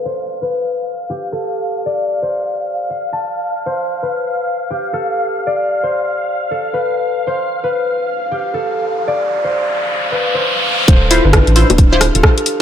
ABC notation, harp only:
X:1
M:4/4
L:1/16
Q:"Swing 16ths" 1/4=133
K:Ddor
V:1 name="Harp"
c2 z B2 z4 G z A4 z | d2 z c2 z4 f z a4 z | c2 z B2 z4 G z A4 z | d2 z c2 z4 A z B4 z |
c2 z B2 z4 G z A4 z | d2 z c2 z4 B z c4 z | [Ac]2 z [DB]2 z4 [EG] z [FA]4 z |]